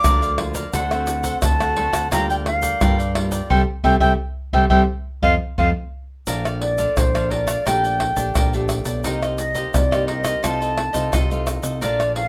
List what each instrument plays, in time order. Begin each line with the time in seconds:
Already playing: nylon-string guitar F3 A#3 F4, flute D6
0.04 fingered electric bass D2, nylon-string guitar D3, cavaquinho D4 A#4 D5 F5, pandeiro, tamborim, shaker, surdo
0.22 cavaquinho A#4 D5 F5, pandeiro, shaker
0.38 nylon-string guitar F3 A#3 F4, pandeiro, tamborim
0.54 cavaquinho A#4 D5 F5, pandeiro, shaker, surdo
0.73 fingered electric bass D2, nylon-string guitar D3 A3 C4 F#4, cavaquinho D4 A4 C5 F#5, flute F#5, pandeiro, shaker, surdo
0.91 nylon-string guitar A3 C4 F#4, cavaquinho A4 C5 F#5, pandeiro, tamborim, shaker
1.07 muted cavaquinho stroke, pandeiro, shaker
1.23 cavaquinho A4 C5 F#5, pandeiro, shaker, surdo
1.42 fingered electric bass D2, nylon-string guitar A2, flute A5, pandeiro, tamborim, shaker, surdo
1.60 nylon-string guitar A3 C4 F#4, cavaquinho A4 C5 F#5, pandeiro, tamborim, shaker
1.76 nylon-string guitar A3 C4 F#4, cavaquinho D4 A4 C5 F#5, pandeiro
1.92 fingered electric bass D2, cavaquinho A4 C5 F#5, pandeiro, tamborim, shaker, surdo
2.11 fingered electric bass D2, nylon-string guitar D3 G3 A#3 F4, cavaquinho F4 A#4 D5 G5, flute A#5, pandeiro, tamborim, shaker, surdo
2.30 cavaquinho A#4 D5 G5, flute G5, pandeiro, shaker
2.46 flute F5, muted cavaquinho stroke, pandeiro, tamborim
2.62 cavaquinho A#4 D5 G5, pandeiro, shaker, surdo
2.81 fingered electric bass G2, nylon-string guitar D3 G3 A#3 F4, cavaquinho F4 A#4 D5 G5, pandeiro, tamborim, shaker, surdo
2.98 cavaquinho A#4 D5 G5, pandeiro, shaker
3.15 nylon-string guitar G3 A#3 F4, pandeiro, tamborim
3.31 cavaquinho A#4 D5 G5, pandeiro, shaker, surdo
3.50 fingered electric bass C2, nylon-string guitar G3 A3 C4, cavaquinho A4 C5 E5, flute G5, surdo
3.84 fingered electric bass C2, nylon-string guitar G3 A3 C4, cavaquinho A4 C5 E5, flute G5, surdo
4.00 fingered electric bass C2, nylon-string guitar G3 A3 C4, cavaquinho A4 C5 E5, flute G5, surdo
4.53 fingered electric bass C2, nylon-string guitar G3 A3 C4, cavaquinho A4 C5 E5, flute G5, surdo
4.70 fingered electric bass C2, nylon-string guitar G3 A3 C4, cavaquinho A4 C5 E5, flute G5, surdo
5.22 fingered electric bass F2, nylon-string guitar F3 A3 C4, cavaquinho C5 D#5 F5, flute F5, surdo
5.58 fingered electric bass F2, nylon-string guitar F3 A3 C4, cavaquinho C5 D#5 F5, flute F5, surdo
6.27 fingered electric bass A#1, nylon-string guitar A#2 F3 A3 D4, cavaquinho A#4 D5 F5 A5, pandeiro, shaker, surdo
6.45 cavaquinho D5 F5 A5, pandeiro, tamborim, shaker
6.61 flute D5, muted cavaquinho stroke, pandeiro
6.78 nylon-string guitar F3 A3 D4, cavaquinho D5 F5 A5, pandeiro, shaker, surdo
6.97 fingered electric bass A#1, nylon-string guitar F2, flute C5, pandeiro, tamborim, shaker, surdo
7.15 nylon-string guitar F3 A3 D4, cavaquinho D5 F5 A5, pandeiro, tamborim, shaker
7.30 cavaquinho A#4 D5 F5 A5, flute D5, pandeiro
7.47 cavaquinho D5 F5 A5, pandeiro, tamborim, shaker, surdo
7.65 fingered electric bass A#1, nylon-string guitar A#2 A3 D4 G4, cavaquinho A#4 D5 G5 A5, flute G5, pandeiro, tamborim, shaker, surdo
7.84 cavaquinho D5 G5 A5, pandeiro, shaker
8.00 muted cavaquinho stroke, pandeiro, tamborim, surdo
8.16 fingered electric bass A#1, nylon-string guitar A3 D4 G4, cavaquinho D5 G5 A5, pandeiro, shaker, surdo
8.35 fingered electric bass A#1, nylon-string guitar A#2, cavaquinho A#4 D5 G5 A5, pandeiro, tamborim, shaker, surdo
8.53 nylon-string guitar A3 D4 G4, cavaquinho D5 G5 A5, pandeiro, shaker
8.69 pandeiro, tamborim, shaker
8.85 fingered electric bass B1, cavaquinho D5 G5 A5, pandeiro, shaker, surdo
9.04 fingered electric bass C2, nylon-string guitar C3 A#3 D#4 G4, cavaquinho D#4 A#4 C5 D#5, pandeiro, shaker, surdo
9.23 cavaquinho A#4 C5 D#5, pandeiro, tamborim, shaker
9.38 flute D#5, muted cavaquinho stroke, pandeiro, shaker
9.54 nylon-string guitar A#3 D#4 G4, cavaquinho A#4 C5 D#5, pandeiro, shaker, surdo
9.74 fingered electric bass C2, nylon-string guitar G2, flute D5, pandeiro, tamborim, shaker, surdo
9.91 nylon-string guitar A#3 D#4 G4, cavaquinho A#4 C5 D#5, pandeiro, tamborim, shaker
10.07 cavaquinho D#4 A#4 C5 D#5, flute D#5, pandeiro
10.24 cavaquinho A#4 C5 D#5, pandeiro, tamborim, shaker, surdo
10.43 fingered electric bass C2, nylon-string guitar C3 A3 D#4 F4, cavaquinho F4 A4 C5 D#5, flute A5, pandeiro, tamborim, shaker, surdo
10.61 cavaquinho A4 C5 D#5, pandeiro, shaker
10.77 muted cavaquinho stroke, pandeiro, tamborim
10.93 fingered electric bass C2, nylon-string guitar A3 D#4 F4, cavaquinho A4 C5 D#5, pandeiro, shaker, surdo
11.12 fingered electric bass C2, nylon-string guitar C3, cavaquinho F4 A4 C5 D#5, pandeiro, tamborim, shaker, surdo
11.30 nylon-string guitar A3 D#4 F4, cavaquinho A4 C5 D#5, pandeiro, shaker
11.47 pandeiro, tamborim, shaker
11.62 fingered electric bass C2, cavaquinho A4 C5 D#5, pandeiro, shaker, surdo
11.81 fingered electric bass A#1, nylon-string guitar A#2 F3 A3 D4, cavaquinho A#4 D5 F5 A5, flute D5, pandeiro, shaker, surdo
11.99 cavaquinho D5 F5 A5, pandeiro, tamborim, shaker
12.15 flute F5, muted cavaquinho stroke, pandeiro